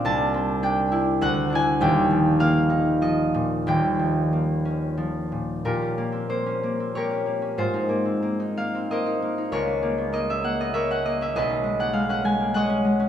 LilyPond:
<<
  \new Staff \with { instrumentName = "Harp" } { \time 3/4 \key bes \dorian \tempo 4 = 97 << { <c'' a''>4 g''4 fis''8 aes''8 | g''4 f''4 ees''4 | g''2. | bes'4 c''4 des''4 |
c''4. f''8 ees''4 | des''4 ees''16 fes''16 ges''16 ees''16 fes''16 ges''16 ees''16 fes''16 | dis''8. fis''16 f''16 fis''16 gis''8 fis''4 | } \\ { r2. | r2. | r2. | <f' g'>2 <g' bes'>4 |
<f' aes'>2 <bes' c''>4 | <aes' bes'>2 <bes' des''>4 | <gis' b'>2 <cis'' dis''>4 | } >> }
  \new Staff \with { instrumentName = "Harp" } { \time 3/4 \key bes \dorian <c, c' d'>8 c'8 d'8 e'8 d,8 <d' e'>8 | <ees,, ees,>8 f8 bes8 ees'8 f8 bes,8 | <ees,, ees,>8 f8 bes8 des'8 f8 bes,8 | bes,16 des'16 bes16 c'16 bes16 des'16 bes16 c'16 bes16 des'16 bes16 des'16 |
aes,16 ees'16 bes16 c'16 bes16 ees'16 bes16 c'16 bes16 ees'16 bes16 ees'16 | des,16 des'16 bes16 ces'16 bes16 des'16 bes16 ces'16 bes16 des'16 bes16 des'16 | b,,16 cis'16 gis16 bes16 gis16 cis'16 gis16 bes16 gis16 cis'16 gis16 cis'16 | }
>>